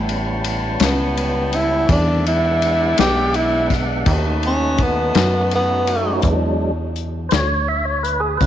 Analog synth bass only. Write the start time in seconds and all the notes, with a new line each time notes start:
Already playing: A1
0.80 C#2
1.89 E2
2.99 B1
4.06 D#2
5.15 F#2
6.24 E2
7.32 D2
8.41 C#2